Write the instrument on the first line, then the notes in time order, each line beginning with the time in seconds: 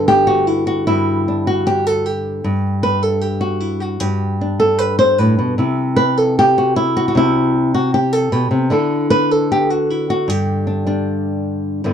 nylon-string guitar
Already playing: G2 D3 B3 D4
0.08 G4
0.27 F#4
0.47 E4
0.67 F#4
0.87 G2 E4
1.28 D4
1.47 F#4
1.67 G4
1.87 A4
2.06 G4
2.44 G2
2.83 B4
3.03 A4
3.21 G4
3.41 F#4
3.60 E4
3.80 F#4
4.00 G2 G4
4.41 D4
4.60 A4
4.79 B4
4.99 C5
5.18 A2 B4
5.39 B2
5.58 C3 E4
5.96 B4
6.17 A4
6.39 G4
6.58 F#4
6.76 E4
6.97 F#4
7.08 F#4
7.15 C3 E4
7.74 F#4
7.94 G4
8.13 A4
8.32 B2 G4
8.51 C3
8.70 D3 D4 E4 A4
9.10 B4
9.31 A4
9.52 G4
9.70 F#4
9.90 E4
10.10 F#4
10.28 G2 G4
10.67 D4
10.87 G3 D4
11.84 G2 D3 B3 E4